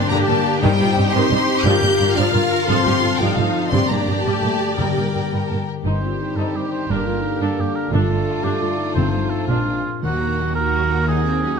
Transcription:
Already playing: harp G2 D3 A#3 D4 G4, french horn section C4, cello section D4, viola section D4, violin section G4 D5
0.02 harp A#4
0.10 double bass section G2, viola section D3, french horn section A#3, cello section G4, harp D5, violin section A#5
0.19 harp G5
0.26 double bass section G2, viola section G3, french horn section A#3, harp D5, violin section A5
0.36 harp A#4
0.45 harp G4
0.53 harp D4
0.61 harp G2, timpani G2, double bass section G2, viola section D#3 D#4, french horn section G3, cello section D#4, violin section C5 G5
0.71 harp G3
0.78 double bass section G2, viola section G3, harp C4, cello section F4
0.88 harp D#4
0.96 double bass section G2, viola section C4, cello section G4, harp G4
1.04 harp C5
1.12 double bass section G2, viola section D#3, french horn section C4, harp D#5, violin section C6
1.21 harp G5
1.30 double bass section G2, viola section G3, harp D#5
1.39 harp C5
1.48 harp G4
1.57 harp D#4
1.64 double bass section G2, harp G2, viola section F3 F4, french horn section G4, violin section A#4 F5 G6
1.74 harp D3
1.81 double bass section G2, viola section A#3, harp D4
1.91 harp F4
1.99 double bass section G2, viola section D4, harp A#4
2.08 harp D5
2.16 double bass section G2, viola section F3, cello section D4, french horn section F4, harp F5, violin section F6
2.25 harp A#5
2.33 double bass section G2, viola section A#3, cello section F4, harp F5
2.43 harp D5
2.51 cello section A#4, harp A#4
2.60 harp F4
2.68 double bass section G2, harp G2, viola section F3, french horn section C4, cello section A4, violin section A4 C6
2.76 harp F3
2.85 double bass section G2, viola section A3, harp C4, cello section G4
2.94 harp F4
3.02 double bass section G2, viola section C4, cello section F4, harp A4
3.12 harp C5
3.19 double bass section G2, viola section F3, french horn section G3, cello section D#4, harp F5, violin section G5
3.29 harp A5
3.36 double bass section G2, french horn section F3, viola section A3, violin section F5, harp F5
3.47 harp C5
3.55 harp A4
3.63 harp F4
3.69 timpani G2, harp G2, double bass section G2, viola section G3, french horn section C4, cello section D4, violin section C6
3.73 viola section G4, violin section G4 D5
3.88 double bass section G2, french horn section A#3, viola section A#3, harp D4, violin section A#5
3.99 harp G4
4.08 double bass section G2, harp D4, viola section D4
4.24 double bass section G2, viola section G3, french horn section A3, cello section G4, harp G5, violin section A5
4.34 harp D5
4.43 double bass section G2, viola section A#3, harp G5
4.52 harp D5
4.61 harp G4
4.70 harp D4
4.76 timpani G2, double bass section G2, harp G2, french horn section G3, viola section G3, cello section A#4, violin section A#4 G5
4.87 harp D3
4.96 double bass section G2, viola section A#3, harp D4
5.05 harp G4
5.13 double bass section G2, viola section D4, harp A#4
5.23 harp D5
5.31 double bass section G2, viola section G3, violin section A#4, harp G5
5.40 harp A#5
5.48 double bass section G2, viola section A#3, violin section A4, harp G5
5.57 harp D5
5.66 violin section A#4, harp A#4
5.75 harp G4
5.83 double bass section G1, harp G2, cello section G2, trombone section D#3 G3, french horn section C4 G4, clarinet D#4, viola section D#4, violin section G4 C5
5.87 oboe C5
6.02 cello section G2, viola section C4, harp D#4, clarinet F4
6.20 clarinet D#4, harp C5
6.36 cello section G2, viola section D#4, oboe A4, harp D#5
6.54 cello section G2, viola section C4, harp G4, oboe G4
6.72 harp D#4, oboe C5
6.89 double bass section G1, harp G2, cello section G2, trombone section D3 A#3, clarinet D4, french horn section D4, viola section D4, violin section A#4, oboe A#4
7.06 cello section G2, viola section A#3, harp D4, clarinet F4
7.22 clarinet D#4, harp A#4
7.41 cello section G2, clarinet D4, viola section D4, oboe A4, harp D5
7.58 cello section G2, viola section A#3, harp G4, oboe G4
7.75 harp D4, oboe A#4
7.91 double bass section G1, cello section G2, harp G2, trombone section A3, viola section D4, clarinet F4, violin section F4 A4, french horn section F4, oboe A4
8.09 cello section G2, viola section A3, harp D4
8.28 harp A4
8.42 cello section G2, viola section D4, clarinet G4, oboe D5, harp D5
8.61 cello section G2, viola section A3, clarinet F4, harp F4
8.77 harp D4, clarinet D#4
8.94 double bass section G1, harp G2, cello section G2, timpani G2, trombone section F3, french horn section C4, viola section C4, oboe C5
9.10 cello section G2, viola section A3, harp C4, oboe C5
9.30 harp F4 A4, oboe A4
9.47 double bass section A#1, harp A#2, cello section A#2, trombone section G#3, clarinet D4, viola section D4, french horn section D4, oboe F4, violin section G#4
9.67 cello section A#2, viola section A#3, harp D4
9.86 harp F4 G#4
10.02 double bass section D#2, timpani D#3, harp D#3, viola section F#3, cello section A#3, violin section D#4 F#5, oboe F#4
10.19 viola section A#3, harp D#4, violin section F#4 A#5
10.38 viola section F#3, violin section D#4 F#5, harp F4
10.55 viola section A#3, harp D#4, cello section F#4, violin section F#4 A#5, oboe A#4
10.73 viola section F#3, harp A#3, violin section D#4 F#5
10.90 viola section A#3, violin section F#4 A#5, harp A#4
11.07 harp D#3, viola section F#3, cello section D#4, violin section D#4 F#5, oboe G#4
11.25 viola section A#3, cello section C4, harp D#4, violin section F#4 A#5
11.43 viola section F#3, cello section C#4, violin section D#4 F#5, harp F4

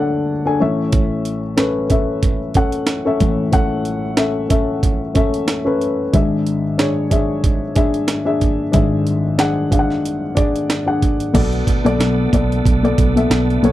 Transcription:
Already playing: upright piano D2 D3 D4 A4 C#5 D5 F#5 A5
0.45 upright piano D4 A4 G#5
0.60 upright piano A1 A2 C#4 A4 E5
0.93 kick, closed hi-hat
1.25 closed hi-hat
1.57 upright piano C#4 A4 B4, snare, closed hi-hat
1.89 upright piano C#4 A4 E5, kick, closed hi-hat
2.23 kick, closed hi-hat
2.54 upright piano C#4 A4 F#5, kick, closed hi-hat
2.72 closed hi-hat
2.87 snare, closed hi-hat
3.05 upright piano C#4 A4 E5
3.20 upright piano A1 A2, kick, closed hi-hat
3.52 upright piano C#4 A4 F#5, kick, closed hi-hat
3.85 closed hi-hat
4.17 upright piano C#4 A4 E5, snare, closed hi-hat
4.49 upright piano C#4 A4 E5, kick, closed hi-hat
4.83 kick, closed hi-hat
5.14 upright piano C#4 A4 E5, kick, closed hi-hat
5.34 closed hi-hat
5.48 snare, closed hi-hat
5.65 upright piano C#4 A4 B4
5.81 closed hi-hat
6.13 upright piano G#1 G#2 D4 G#4 E5, kick, closed hi-hat
6.47 closed hi-hat
6.78 upright piano D4 G#4 C#5, snare, closed hi-hat
7.10 upright piano D4 G#4 E5, kick, closed hi-hat
7.44 kick, closed hi-hat
7.75 upright piano D4 G#4 E5, kick, closed hi-hat
7.94 closed hi-hat
8.08 snare, closed hi-hat
8.25 upright piano D4 G#4 E5
8.41 kick, closed hi-hat
8.72 upright piano G#1 G#2 D4 G#4 E5, kick, closed hi-hat
9.07 closed hi-hat
9.38 upright piano D4 G#4 F#5, snare, closed hi-hat
9.71 upright piano D4 G#4 F5, kick, closed hi-hat
9.79 upright piano F#5
9.90 snare
10.05 closed hi-hat
10.35 upright piano D4 G#4 D5, kick, closed hi-hat
10.56 closed hi-hat
10.70 snare, closed hi-hat
10.86 upright piano D4 G#4 F#5
11.02 kick, closed hi-hat
11.20 closed hi-hat
11.33 picked electric bass B1, upright piano B2 B3 A4 D5, tonewheel organ D3 A3 B3, kick, closed hi-hat, crash
11.53 closed hi-hat
11.67 kick, closed hi-hat
11.85 picked electric bass B1, upright piano B3 A4 D5, closed hi-hat
11.99 picked electric bass B1, snare, closed hi-hat
12.33 picked electric bass B1, upright piano B3 A4 D5, kick, closed hi-hat
12.52 closed hi-hat
12.65 picked electric bass B1, kick, closed hi-hat
12.83 upright piano B3 A4 D5, closed hi-hat
12.98 picked electric bass B1, kick, closed hi-hat
13.16 upright piano B3 A4 E5, closed hi-hat
13.30 picked electric bass B1, snare, closed hi-hat
13.50 closed hi-hat
13.63 picked electric bass B1, upright piano B3 A4 C#5, closed hi-hat

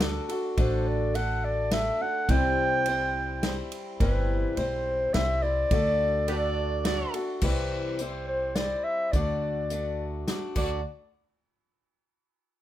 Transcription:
Already playing: upright bass D2, upright piano F#4 A4 D5, clarinet A4
0.00 steel-string acoustic guitar A3 D4 F#4 A4, snare, ride
0.29 steel-string acoustic guitar D4 F#4 A4, ride
0.57 upright bass A1, steel-string acoustic guitar D3 A3 D4 F#4 A4, clarinet C5, kick, ride
0.87 clarinet D5
1.14 steel-string acoustic guitar A3 D4 F#4 A4, clarinet F#5, ride
1.44 clarinet D5
1.71 steel-string acoustic guitar A3 D4 F#4 A4, clarinet E5, snare, ride
2.01 upright piano F#4 A4 D5, clarinet F#5
2.29 upright bass C2, steel-string acoustic guitar C3 E3 G3 C4 E4 C5, upright piano C4 E4 G4, clarinet G5, kick, ride
2.86 steel-string acoustic guitar G3 C4 E4 C5, ride
3.43 steel-string acoustic guitar G3 C4 E4 C5, snare, ride
3.72 ride
4.00 upright bass G1, steel-string acoustic guitar C3 E3 G3 C4 E4, clarinet B4, kick, ride
4.57 upright bass B1, steel-string acoustic guitar G3 C4 E4 C5, clarinet C5, ride
5.14 upright bass C2, steel-string acoustic guitar G3 C4 E4 C5, clarinet E5, snare, ride
5.42 steel-string acoustic guitar G3 C4 E4 C5, clarinet D5
5.71 upright bass D2, steel-string acoustic guitar D3 A3 D4 F#4 A4, upright piano F#4 A4 D5, kick, ride
6.28 steel-string acoustic guitar A3 D4 F#4 A4, harmonica G4 B4 D5, ride
6.85 steel-string acoustic guitar A3 D4 F#4 A4, harmonica D5, snare, ride
7.14 steel-string acoustic guitar D4 F#4 A4, ride
7.41 upright bass C2, steel-string acoustic guitar C3 E3 G3 C4 E4, clarinet B4, kick, crash
7.99 steel-string acoustic guitar G3 C4 E4 C5, clarinet C5, closed hi-hat
8.28 clarinet C5
8.55 steel-string acoustic guitar G3 C4 E4 C5, clarinet D5, snare, closed hi-hat
8.84 clarinet E5
9.12 upright bass D2, steel-string acoustic guitar D3 A3 D4 F#4 D5, clarinet D5, kick, closed hi-hat
9.70 steel-string acoustic guitar A3 D4 F#4 D5, closed hi-hat
10.27 steel-string acoustic guitar A3 D4 F#4 D5, snare, closed hi-hat
10.55 upright bass D2, steel-string acoustic guitar D3 A3 D4 F#4 D5, harmonica D5, kick, crash

